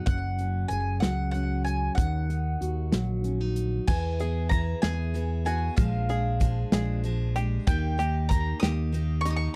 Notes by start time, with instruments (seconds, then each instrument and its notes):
Already playing: steel-string acoustic guitar F#3
0.06 picked electric bass F#1, steel-string acoustic guitar F#2, mandolin F#5, kick, closed hi-hat
0.39 steel-string acoustic guitar C#4, closed hi-hat
0.68 picked electric bass F#1, mandolin G#5, closed hi-hat
0.73 steel-string acoustic guitar G#4
1.00 picked electric bass C#2, steel-string acoustic guitar F#3, mandolin F#5, snare, closed hi-hat
1.31 steel-string acoustic guitar C#4, mandolin F#5, closed hi-hat
1.65 mandolin G#5, closed hi-hat
1.95 picked electric bass D#2, steel-string acoustic guitar D#3, mandolin F#5, kick, closed hi-hat
2.30 steel-string acoustic guitar D#4, closed hi-hat
2.61 picked electric bass D#2, steel-string acoustic guitar F#4, closed hi-hat
2.92 picked electric bass A#1, steel-string acoustic guitar F#3, snare, closed hi-hat
3.24 steel-string acoustic guitar C#4, closed hi-hat
3.41 steel-string acoustic guitar D#4
3.56 closed hi-hat
3.88 picked electric bass E2, steel-string acoustic guitar E3 B3 E4 G#4, mandolin G#5, kick, crash
4.20 steel-string acoustic guitar B3 E4 G#4, five-string banjo G#4, closed hi-hat
4.49 steel-string acoustic guitar E3 B3 E4 G#4, mandolin A#5, kick, closed hi-hat
4.82 picked electric bass E2, steel-string acoustic guitar E3 B3 E4 G#4, five-string banjo G#4, mandolin G#5, snare, closed hi-hat
5.14 steel-string acoustic guitar E3 B3 E4 G#4, closed hi-hat
5.45 steel-string acoustic guitar B3 E4 G#4, five-string banjo F#4, mandolin G#5, closed hi-hat
5.76 picked electric bass A#1, steel-string acoustic guitar A#2 F3 G#3 D4 G#4, mandolin F5, kick, closed hi-hat
6.09 steel-string acoustic guitar G#3 D4 G#4, five-string banjo G#4, closed hi-hat
6.40 steel-string acoustic guitar F3 G#3 D4 G#4, kick, closed hi-hat
6.72 picked electric bass A#1, steel-string acoustic guitar A#2 F3 G#3 D4 G#4, five-string banjo G#4, snare, closed hi-hat
7.04 steel-string acoustic guitar F3 G#3 D4 G#4, closed hi-hat
7.36 steel-string acoustic guitar G#3 D4 G#4, five-string banjo G4, closed hi-hat
7.67 picked electric bass D#2, steel-string acoustic guitar D#3 A#3 D#4 G4, mandolin G5, kick, closed hi-hat
7.98 steel-string acoustic guitar A#3 D#4 G4, five-string banjo G4, closed hi-hat
8.29 steel-string acoustic guitar D#3 A#3 D#4 G4, mandolin A#5, kick, closed hi-hat
8.60 picked electric bass D#2, steel-string acoustic guitar D#3 A#3 D#4 G4, five-string banjo G4, mandolin D#6, snare, closed hi-hat
8.92 steel-string acoustic guitar D#3 A#3 D#4 G4, closed hi-hat
9.21 mandolin C#6
9.25 steel-string acoustic guitar A#3 D#4 G4, five-string banjo D#4, closed hi-hat
9.30 mandolin D#6
9.36 mandolin C#6